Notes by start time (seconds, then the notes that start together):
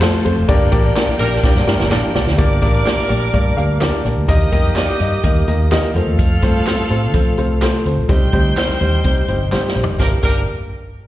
Already playing: F4 C5 A5
0.01 A3 C4 F4 A4 C5, snare, clap, ride, tambourine
0.24 F2 A3 C4 F4 A4 C5, ride, tambourine
0.38 F1
0.48 G1 A#3 D4 G4 A#4 D5 G5, kick, ride, tambourine
0.72 A1 A#3 D4 G4 A#4 D5, kick, ride, tambourine
0.96 A#3 D4 G4 A#4 D5, snare, clap, ride, tambourine
1.09 muted fingered electric bass stroke
1.19 A#1 G3 A#3 D4 G4 A#4 D5, ride, tambourine
1.44 A#3 D4 G4 A#4 D5, kick, snare, tambourine
1.56 G2, snare
1.67 G2 A#3 D4 G4 A#4 D5, snare, tambourine
1.80 G1, snare
1.91 A#1 A#3 D4 G4 A#4 D5, snare, clap, tambourine
2.14 C2 A#3 D4 G4 A#4 D5, snare, tambourine
2.27 D2, snare
2.38 G1 G3 A#3 D4 G4 A#4 D5 D6, kick, closed hi-hat, tambourine
2.62 A1 A#3 D4 G4 A#4 D5, kick, snare, closed hi-hat, tambourine
2.85 A#3 D4 G4 A#4 D5, snare, clap, closed hi-hat, tambourine
2.98 muted fingered electric bass stroke
3.09 A#1 A#3 D4 G4 A#4 D5, closed hi-hat, tambourine
3.33 G2 A#3 D4 G4 A#4 D5, kick, closed hi-hat
3.56 D2 A#3 D4 G4 A#4 F5, closed hi-hat, tambourine
3.81 A#3 D4 G4 A#4 D5, snare, clap, closed hi-hat, tambourine
4.04 A#1 A#3 D4 G4 A#4 D5, closed hi-hat, tambourine
4.17 D2
4.28 D#2 D#3 A#3 D#4 G4 A#4 D#5 D#6, kick, closed hi-hat, tambourine
4.52 F2 A#3 D#4 G4 A#4 D#5, kick, closed hi-hat, tambourine
4.76 A#3 D#4 G4 A#4 D5, snare, clap, closed hi-hat, tambourine
4.88 muted fingered electric bass stroke
4.99 G2 A#3 D#4 G4 A#4 D#5, closed hi-hat, tambourine
5.23 D#2 A#3 D#4 G4 A#4 D#5, kick, closed hi-hat
5.48 D#2 A#3 D#4 G4 A#4 D#5, closed hi-hat, tambourine
5.71 A#3 D#4 G4 A#4 D#5, snare, clap, closed hi-hat, tambourine
5.94 F2 F3 A3 C4 F4 A4 C5 F5 F6, closed hi-hat, tambourine
6.07 D#2
6.19 F2, kick, closed hi-hat, tambourine
6.42 G2 A3 C4 F4 A4 C5, kick, snare, closed hi-hat, tambourine
6.66 A3 C4 F4 A4 C5, snare, clap, closed hi-hat, tambourine
6.79 muted fingered electric bass stroke
6.90 A2 A3 C4 F4 A4 C5, closed hi-hat, tambourine
7.14 F3 A3 C4 F4 A4 C5, kick, closed hi-hat, tambourine
7.38 C2 A3 C4 F4 A4 C5, closed hi-hat, tambourine
7.61 A3 C4 F4 A4 C5, snare, clap, closed hi-hat, tambourine
7.86 D2 A3 C4 F4 A4 C5, closed hi-hat, tambourine
7.97 A#1
8.09 C2 G3 C4 D#4 G4 C5 G5 G6, kick, closed hi-hat, tambourine
8.32 D2 G3 C4 D#4 G4 C5, kick, closed hi-hat, tambourine
8.57 G3 C4 D#4 G4 C5, snare, clap, closed hi-hat, tambourine
8.69 muted fingered electric bass stroke, snare
8.80 D#2 G3 C4 D#4 G4 C5, closed hi-hat, tambourine
9.04 C3 G3 C4 D#4 G4 C5, kick, closed hi-hat
9.28 G1 G3 C4 D#4 G4 C5, closed hi-hat
9.52 G3 C4 D#4 G4 C5, snare, clap, tambourine
9.68 snare
9.75 A#1 G3 C4 D#4 G4 C5, tambourine
9.84 F1, floor tom
9.99 G1 G3 A#3 D4 G4 A#4 G5 D6, kick, snare, tambourine
10.23 G1 G3 A#3 D4 G4 A#4 G5 D6, kick, crash, tambourine